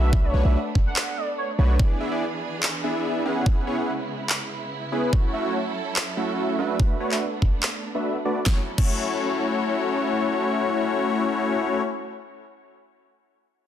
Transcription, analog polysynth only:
Already playing: A3 D4 F#4 B4 E5
0.34 A3 D4 F#4 B4 C#5
0.45 A3 D4 F#4 B4 E5
1.59 A3 D4 F#4 B4 C#5
1.79 B3 D4 E4 G#4 D5
2.00 B3 D4 E4 G#4 E5
2.11 B3 D4 E4 G#4 D5
2.84 B3 D4 E4 G#4 E5
3.25 B3 C#4 E4 G#4 F#5
3.67 B3 C#4 E4 G#4 C#5
3.78 B3 C#4 E4 G#4 F#5
4.92 B3 C#4 E4 G#4 B4
5.13 A3 C#4 E4 F#4 C#5
5.34 A3 C#4 E4 F#4 E5
5.45 A3 C#4 E4 F#4 C#5
6.17 A3 C#4 E4 F#4 E5
6.59 A3 D4 F#4 B4 E5
7.00 A3 D4 F#4 B4 C#5
7.11 A3 D4 F#4 B4 E5
7.95 A3 D4 F#4 B4 E5
8.25 A3 D4 F#4 B4 D5
8.46 A3 C#4 E4 F#4 C#5
8.78 A3 C#4 E4 F#4 C#5

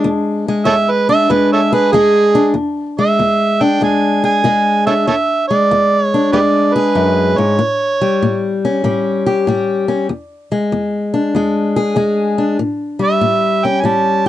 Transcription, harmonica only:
0.66 A4 C#5 E5
0.91 B4
1.10 E5
1.31 B4
1.53 A4 C#5 E5
1.73 B4
1.92 G#4
3.00 E5
3.62 G5
3.83 G#5
4.25 G#5
4.87 A4 C#5 E5
5.08 A4 C#5 E5
5.48 D5
6.02 C#5
6.32 G4 B4 D5
6.74 B4
7.38 C#5
13.04 E5
13.65 G5
13.80 G#5
13.86 A5

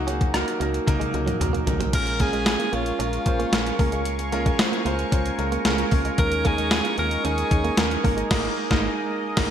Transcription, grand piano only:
Already playing: F#3 A#3 D#4 F#4 G#4 A#4 C5
0.07 F#3 A#3 D#4 G#4
0.34 F#3 A#3 D#4 A#4
0.61 F#3 A#3 D#4 A#4
0.86 F#3 A#3 D#4 A#4
1.13 F#3 A#3 D#4 A#4
1.40 F#3 A#3 D#4 A#4
1.66 F#3 A#3 D#4 A#4
1.93 G#3 C#4 F4 A#4
2.19 G#3 C#4 F4 A#4
2.46 G#3 C#4 F4 A#4
2.73 G#3 C#4 F4 C#5
2.99 G#3 C#4 F4 A#4
3.26 G#3 C#4 F4 C5
3.52 G#3 C#4 F4 A#4
3.79 G#3 C#4 F4 A#4
4.32 G#3 C#4 F4 A#4
4.59 G#3 C#4 F4 C5
4.85 G#3 C#4 F4 C5
5.12 G#3 C#4 F4 C5
5.38 G#3 C#4 F4 A#4
5.65 G#3 C#4 F4 A#4
5.92 G#3 C#4 F4 A#4
6.18 G#3 C#4 D#4 A#4
6.45 G#3 C#4 D#4 A#4
6.72 G#3 C#4 D#4 F4
6.98 G#3 C#4 D#4 A#4
7.25 G#3 C#4 D#4 A#4
7.51 G#3 C#4 D#4 C#5
7.77 G#3 C#4 D#4 A#4
8.04 G#3 A#3 D#4 A#4
8.30 G#3 A#3 D#4 A#4
8.70 G#3 A#3 D#4 A#4
9.37 G#3 A#3 D#4 A#4

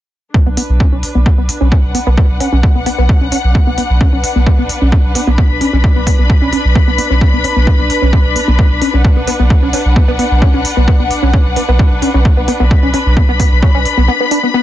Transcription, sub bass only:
0.46 B1
0.69 B1
0.92 B1
1.15 B1
1.38 B1
1.61 B1
1.84 B1
2.07 B1
2.30 B1
2.52 B1
2.75 B1
2.98 B1
3.21 B1
3.44 B1
3.67 B1
3.90 B1
4.13 B1
4.36 B1
4.59 B1
4.82 B1
5.04 B1
5.27 B1
5.50 B1
5.73 B1
5.96 B1
6.19 B1
6.42 B1
6.65 B1
6.88 B1
7.10 B1
7.33 B1
7.56 B1
7.79 B1
8.02 B1
8.25 B1
8.48 B1
8.71 B1
8.94 B1
9.17 B1
9.40 B1
9.62 B1
9.85 B1
10.08 B1
10.31 B1
10.54 B1
10.77 B1
11.00 B1
11.23 B1
11.46 B1
11.68 B1
11.91 B1
12.14 B1
12.37 B1
12.60 B1
12.83 B1
13.06 B1
13.29 B1
13.52 B1
13.75 B1
13.97 B1

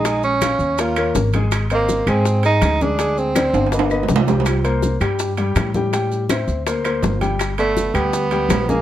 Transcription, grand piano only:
0.06 G#3 G#4 G#5
0.42 C#4 C#5 F5
0.79 A#3 A#4 C#5
0.97 A#3 A#4 C#5
1.34 G#3 G#4 G#5
1.71 C4 C5 D#5
2.07 G#3 G#4 G#5
2.45 G#3 G#4 G#5
2.82 G#3 G#4 G#5
3.00 G#3 G#4 G#5
3.37 C4 C5 D5
3.73 B3 B4 D#5
3.91 B3 B4 D#5
4.27 G3 G4 G5
4.64 A#3 A#4 C5
5.01 G3 G4 G5
5.38 G3 G4 G5
5.75 G3 G4 G5
5.93 G3 G4 G5
6.30 C4 C5 E5
6.67 A#3 A#4 C5
6.85 A#3 A#4 C5
7.21 G3 G4 G5
7.59 B3 B4 D5
7.94 G3 G4 G5
8.32 G3 G4 G5
8.69 G#3 G#4 G#5

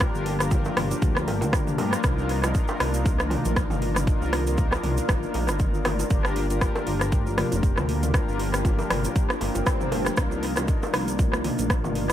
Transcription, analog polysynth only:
0.00 D4 F4 G4 A#4
0.40 D4 F4 G4 A#4
1.78 D4 F4 G4 A#4
2.04 D4 D#4 F4 A#4
2.44 D4 D#4 F4 A#4
4.07 D4 D#4 F4 A#4
4.47 D4 D#4 F4 A#4
6.11 D4 F4 G4 A#4
6.50 D4 F4 G4 A#4
8.14 D4 F4 G4 A#4
8.54 D4 F4 G4 A#4
10.17 D4 D#4 F4 A#4
10.57 D4 D#4 F4 A#4

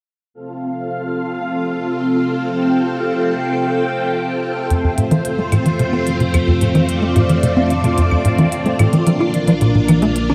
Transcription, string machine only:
0.34 C4 F4 A4 F5
2.52 G5
4.71 A3 C4 F4 C5
6.89 D5
9.07 A#3 D4 D5

